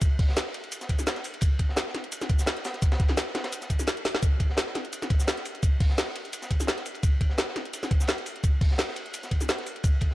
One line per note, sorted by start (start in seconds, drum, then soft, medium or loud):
0.01 kick loud
0.01 closed hi-hat medium
0.01 ride medium
0.01 cabasa medium
0.19 kick loud
0.19 closed hi-hat medium
0.19 open hi-hat medium
0.29 snare soft
0.37 snare loud
0.37 closed hi-hat loud
0.37 ride medium
0.37 cabasa medium
0.46 snare soft
0.54 closed hi-hat medium
0.54 ride medium
0.64 closed hi-hat soft
0.72 closed hi-hat medium
0.72 ride medium
0.72 cabasa medium
0.81 snare soft
0.81 closed hi-hat soft
0.81 cabasa soft
0.89 kick medium
0.89 closed hi-hat medium
0.89 ride medium
0.99 snare soft
0.99 cabasa medium
1.07 snare loud
1.07 closed hi-hat medium
1.07 ride medium
1.07 cabasa medium
1.16 snare medium
1.16 closed hi-hat soft
1.24 open hi-hat medium
1.24 ride medium
1.24 cabasa soft
1.34 closed hi-hat soft
1.34 ride soft
1.41 kick loud
1.41 closed hi-hat loud
1.41 ride medium
1.41 cabasa medium
1.59 kick medium
1.59 closed hi-hat medium
1.59 ride medium
1.69 snare soft
1.76 snare loud
1.76 closed hi-hat medium
1.76 ride medium
1.76 cabasa medium
1.87 snare soft
1.95 snare soft
1.95 closed hi-hat medium
1.95 ride medium
2.04 closed hi-hat soft
2.12 closed hi-hat loud
2.12 ride medium
2.12 cabasa medium
2.21 snare soft
2.21 closed hi-hat soft
2.21 cabasa soft
2.29 kick loud
2.29 closed hi-hat medium
2.29 ride medium
2.39 snare soft
2.39 cabasa medium
2.46 snare loud
2.46 closed hi-hat loud
2.46 ride medium
2.46 cabasa medium
2.56 snare soft
2.56 closed hi-hat soft
2.65 snare loud
2.65 open hi-hat medium
2.65 ride medium
2.65 cabasa soft
2.73 snare medium
2.73 closed hi-hat soft
2.82 kick loud
2.82 snare soft
2.82 closed hi-hat loud
2.82 ride medium
2.82 cabasa medium
2.92 snare loud
2.92 ride medium
3.00 kick loud
3.00 snare medium
3.00 closed hi-hat medium
3.08 snare soft
3.08 snare medium
3.08 ride medium
3.17 snare loud
3.17 closed hi-hat loud
3.17 ride medium
3.17 cabasa medium
3.27 snare soft
3.35 snare loud
3.35 snare soft
3.35 closed hi-hat medium
3.35 ride medium
3.44 snare loud
3.44 closed hi-hat soft
3.44 ride medium
3.52 closed hi-hat loud
3.52 ride medium
3.52 cabasa medium
3.61 snare soft
3.61 closed hi-hat soft
3.61 cabasa soft
3.70 kick medium
3.70 closed hi-hat medium
3.70 ride medium
3.70 cabasa soft
3.79 snare soft
3.79 cabasa medium
3.87 snare loud
3.87 closed hi-hat loud
3.87 ride medium
3.87 cabasa medium
3.97 closed hi-hat soft
4.05 snare medium
4.05 open hi-hat medium
4.05 ride medium
4.05 cabasa soft
4.15 snare loud
4.15 snare soft
4.15 closed hi-hat soft
4.23 kick loud
4.23 closed hi-hat loud
4.23 ride medium
4.23 cabasa soft
4.40 kick medium
4.40 closed hi-hat medium
4.40 ride medium
4.50 snare soft
4.57 snare loud
4.57 closed hi-hat loud
4.57 ride medium
4.57 cabasa soft
4.66 snare soft
4.75 snare soft
4.75 closed hi-hat medium
4.75 ride medium
4.85 closed hi-hat soft
4.93 closed hi-hat loud
4.93 ride medium
4.93 cabasa medium
5.02 snare soft
5.02 snare medium
5.02 closed hi-hat soft
5.02 cabasa soft
5.10 kick loud
5.10 closed hi-hat medium
5.10 ride medium
5.19 snare soft
5.19 cabasa medium
5.27 snare loud
5.27 closed hi-hat loud
5.27 ride medium
5.27 cabasa soft
5.37 snare soft
5.37 closed hi-hat soft
5.45 open hi-hat medium
5.45 ride medium
5.45 cabasa soft
5.55 closed hi-hat soft
5.63 kick loud
5.63 closed hi-hat loud
5.63 ride medium
5.63 cabasa soft
5.80 kick loud
5.80 closed hi-hat medium
5.80 open hi-hat medium
5.89 snare soft
5.98 snare loud
5.98 closed hi-hat medium
5.98 ride medium
5.98 cabasa soft
6.07 snare soft
6.16 closed hi-hat medium
6.16 ride medium
6.25 closed hi-hat soft
6.33 closed hi-hat loud
6.33 ride medium
6.33 cabasa medium
6.42 snare soft
6.42 closed hi-hat soft
6.42 cabasa soft
6.51 kick medium
6.51 closed hi-hat medium
6.51 ride medium
6.60 snare soft
6.60 cabasa medium
6.67 snare loud
6.67 closed hi-hat loud
6.67 ride medium
6.67 cabasa soft
6.77 snare medium
6.77 closed hi-hat soft
6.86 open hi-hat medium
6.86 ride medium
6.86 cabasa soft
6.94 closed hi-hat soft
6.94 ride soft
7.03 kick loud
7.03 closed hi-hat medium
7.03 ride medium
7.03 cabasa soft
7.21 kick medium
7.21 closed hi-hat medium
7.21 ride medium
7.29 snare soft
7.38 snare loud
7.38 closed hi-hat medium
7.38 ride medium
7.38 cabasa soft
7.48 snare soft
7.56 snare soft
7.56 snare medium
7.56 closed hi-hat medium
7.56 ride medium
7.65 closed hi-hat soft
7.73 closed hi-hat loud
7.73 ride loud
7.73 cabasa medium
7.83 snare soft
7.83 snare medium
7.83 closed hi-hat soft
7.83 cabasa soft
7.91 kick loud
7.91 closed hi-hat medium
7.91 ride medium
8.00 snare soft
8.00 cabasa medium
8.07 snare loud
8.07 closed hi-hat medium
8.07 ride loud
8.07 cabasa soft
8.17 snare soft
8.17 closed hi-hat soft
8.26 open hi-hat medium
8.26 ride medium
8.26 cabasa soft
8.36 closed hi-hat soft
8.44 kick loud
8.44 closed hi-hat medium
8.44 ride medium
8.44 cabasa soft
8.61 kick loud
8.61 closed hi-hat medium
8.61 open hi-hat medium
8.71 snare soft
8.78 snare loud
8.78 closed hi-hat medium
8.78 ride loud
8.78 cabasa soft
8.88 snare soft
8.96 closed hi-hat medium
8.96 ride medium
9.06 closed hi-hat soft
9.14 closed hi-hat medium
9.14 ride medium
9.14 cabasa medium
9.23 snare soft
9.23 closed hi-hat soft
9.23 cabasa soft
9.31 kick medium
9.31 closed hi-hat medium
9.31 ride medium
9.41 snare soft
9.41 cabasa medium
9.49 snare loud
9.49 closed hi-hat medium
9.49 ride loud
9.49 cabasa soft
9.58 snare medium
9.58 closed hi-hat soft
9.66 open hi-hat medium
9.66 ride medium
9.66 cabasa soft
9.76 closed hi-hat soft
9.76 ride soft
9.84 kick loud
9.84 closed hi-hat medium
9.84 ride medium
9.84 cabasa medium
10.01 kick medium
10.01 closed hi-hat medium
10.01 ride medium
10.11 snare soft